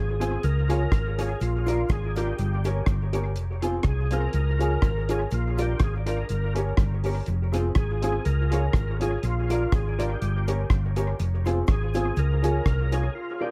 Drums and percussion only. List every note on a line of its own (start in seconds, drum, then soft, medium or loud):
0.21 closed hi-hat loud
0.21 cabasa medium
0.43 closed hi-hat medium
0.43 cabasa medium
0.69 closed hi-hat loud
0.69 cabasa medium
0.92 kick loud
0.92 cross-stick loud
0.92 closed hi-hat medium
0.92 cabasa medium
1.19 closed hi-hat medium
1.19 cabasa medium
1.40 closed hi-hat medium
1.40 cabasa medium
1.66 closed hi-hat medium
1.66 cabasa medium
1.89 kick loud
1.89 cross-stick loud
1.89 closed hi-hat medium
1.89 cabasa medium
2.16 closed hi-hat medium
2.16 cabasa medium
2.38 closed hi-hat medium
2.38 cabasa medium
2.64 closed hi-hat loud
2.64 cabasa medium
2.86 kick loud
2.86 cross-stick loud
2.86 closed hi-hat medium
2.86 cabasa medium
3.13 closed hi-hat medium
3.13 cabasa medium
3.36 closed hi-hat medium
3.36 cabasa medium
3.62 closed hi-hat loud
3.62 cabasa medium
3.83 kick loud
3.83 cross-stick loud
3.83 closed hi-hat medium
3.83 cabasa medium
4.11 closed hi-hat loud
4.11 cabasa medium
4.33 closed hi-hat medium
4.33 cabasa medium
4.61 closed hi-hat medium
4.61 cabasa medium
4.82 kick loud
4.82 cross-stick loud
4.82 closed hi-hat medium
4.82 cabasa medium
5.09 closed hi-hat medium
5.09 cabasa medium
5.31 closed hi-hat medium
5.31 cabasa medium
5.58 closed hi-hat loud
5.58 cabasa medium
5.79 kick loud
5.79 cross-stick loud
5.79 closed hi-hat medium
5.79 cabasa medium
6.07 closed hi-hat loud
6.07 cabasa medium
6.29 closed hi-hat medium
6.29 cabasa medium
6.56 closed hi-hat loud
6.56 cabasa medium
6.77 kick loud
6.77 cross-stick loud
6.77 closed hi-hat medium
6.77 cabasa medium
7.04 open hi-hat soft
7.04 cabasa medium
7.26 closed hi-hat medium
7.26 cabasa medium
7.53 closed hi-hat medium
7.53 cabasa medium
7.75 kick loud
7.75 cross-stick loud
7.75 closed hi-hat medium
7.75 cabasa medium
8.03 closed hi-hat loud
8.03 cabasa medium
8.25 closed hi-hat medium
8.25 cabasa medium
8.52 closed hi-hat medium
8.52 cabasa medium
8.73 kick loud
8.73 cross-stick loud
8.73 closed hi-hat medium
8.73 cabasa medium
9.01 closed hi-hat medium
9.01 cabasa medium
9.23 closed hi-hat medium
9.23 cabasa medium
9.50 closed hi-hat loud
9.50 cabasa medium
9.72 kick loud
9.72 cross-stick loud
9.72 closed hi-hat medium
9.72 cabasa medium
9.99 closed hi-hat loud
9.99 cabasa medium
10.22 closed hi-hat medium
10.22 cabasa medium
10.48 closed hi-hat loud
10.48 cabasa medium
10.70 kick loud
10.70 cross-stick loud
10.70 closed hi-hat medium
10.70 cabasa medium
10.96 closed hi-hat medium
10.96 cabasa medium
11.19 closed hi-hat medium
11.19 cabasa medium
11.46 closed hi-hat medium
11.46 cabasa medium
11.67 kick loud
11.67 cross-stick loud
11.67 closed hi-hat medium
11.67 cabasa medium
11.94 closed hi-hat loud
11.94 cabasa medium
12.16 closed hi-hat medium
12.16 cabasa soft
12.44 closed hi-hat medium
12.44 cabasa medium
12.66 kick loud
12.66 cross-stick loud
12.66 closed hi-hat medium
12.66 cabasa medium
12.92 closed hi-hat medium
12.92 cabasa medium